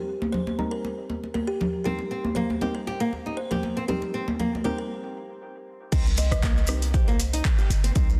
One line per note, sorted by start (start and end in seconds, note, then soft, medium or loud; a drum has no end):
0.00 0.56 G3 medium
0.00 0.56 C4 medium
0.00 0.56 D#4 medium
0.00 0.34 G4 medium
0.00 0.56 A#4 medium
0.22 high conga medium
0.32 0.69 C5 loud
0.32 muted conga soft
0.32 low conga medium
0.47 high conga medium
0.58 1.83 G3 medium
0.58 1.83 C4 medium
0.58 1.83 D#4 medium
0.58 1.83 A#4 medium
0.58 high conga medium
0.71 1.19 A#4 medium
0.85 muted conga medium
1.10 high conga medium
1.24 muted conga soft
1.34 1.41 A#4 medium
1.34 high conga medium
1.47 1.83 G4 medium
1.61 muted conga soft
1.61 low conga loud
1.84 2.59 G3 medium
1.84 2.59 C4 medium
1.84 1.99 C4 loud
1.84 2.59 D#4 medium
1.84 2.32 G4 medium
1.84 2.59 A#4 medium
1.84 low conga medium
1.99 muted conga soft
2.11 2.23 C4 medium
2.25 high conga loud
2.35 2.49 A#3 medium
2.35 2.72 C5 loud
2.35 muted conga soft
2.35 low conga medium
2.50 high conga loud
2.61 2.82 G3 medium
2.61 2.82 C4 medium
2.61 2.81 D#4 medium
2.61 2.74 G4 medium
2.61 2.82 A#4 medium
2.61 high conga loud
2.75 3.22 A#4 medium
2.87 3.00 G4 medium
2.87 muted conga soft
3.00 3.11 A#3 loud
3.13 high conga medium
3.26 3.37 D#4 medium
3.26 muted conga soft
3.37 3.43 C5 loud
3.51 3.63 G4 medium
3.51 3.90 A#4 medium
3.51 high conga medium
3.51 low conga medium
3.63 muted conga soft
3.63 high conga medium
3.77 3.83 C4 medium
3.88 4.62 G3 medium
3.88 4.02 C4 loud
3.88 4.62 C4 medium
3.88 4.62 D#4 medium
3.88 4.41 G4 medium
3.88 4.62 A#4 medium
3.88 low conga medium
4.02 muted conga soft
4.14 4.27 C4 medium
4.28 high conga loud
4.39 4.52 A#3 medium
4.39 4.66 A#4 medium
4.39 muted conga soft
4.39 low conga medium
4.55 high conga medium
4.64 5.90 G3 medium
4.64 5.89 C4 medium
4.64 5.90 D#4 medium
4.64 4.77 G4 medium
4.64 5.90 A#4 medium
4.64 4.79 C5 medium
4.64 high conga medium
4.78 4.91 A#4 medium
5.92 7.41 C2 loud
5.92 6.66 G3 medium
5.92 6.05 C4 loud
5.92 6.66 C4 medium
5.92 6.66 D#4 medium
5.92 6.66 A#4 medium
5.92 kick loud
5.92 closed hi-hat soft
5.92 crash loud
5.92 maracas medium
6.06 maracas soft
6.17 6.30 C4 medium
6.17 6.24 D#5 loud
6.17 open hi-hat medium
6.17 maracas medium
6.32 6.44 D#5 loud
6.32 kick medium
6.32 cross-stick medium
6.32 closed hi-hat medium
6.32 maracas soft
6.43 6.56 A#3 medium
6.43 6.68 A#4 medium
6.43 kick loud
6.43 cross-stick medium
6.43 clap loud
6.43 closed hi-hat soft
6.43 maracas medium
6.57 maracas soft
6.67 6.89 G3 medium
6.67 6.89 C4 medium
6.67 6.89 D#4 medium
6.67 6.81 G4 medium
6.67 6.88 A#4 medium
6.67 6.95 A#4 medium
6.67 cross-stick loud
6.67 open hi-hat loud
6.67 maracas loud
6.82 closed hi-hat medium
6.82 maracas soft
6.94 7.06 G4 medium
6.94 7.66 C5 medium
6.94 kick loud
6.94 closed hi-hat soft
6.94 maracas soft
7.08 7.18 A#3 loud
7.08 maracas soft
7.20 open hi-hat medium
7.20 maracas loud
7.33 7.44 D#4 medium
7.33 closed hi-hat medium
7.33 maracas soft
7.45 kick loud
7.45 clap loud
7.45 closed hi-hat soft
7.45 maracas soft
7.58 7.70 G4 medium
7.58 maracas soft
7.70 7.91 G1 medium
7.70 open hi-hat medium
7.70 maracas loud
7.84 7.90 C4 medium
7.84 closed hi-hat medium
7.84 maracas soft
7.95 8.20 C2 loud
7.95 8.20 G3 medium
7.95 8.09 C4 loud
7.95 8.20 C4 medium
7.95 8.20 D#4 medium
7.95 8.20 A#4 medium
7.95 kick loud
7.95 closed hi-hat soft
7.95 maracas medium
8.09 maracas soft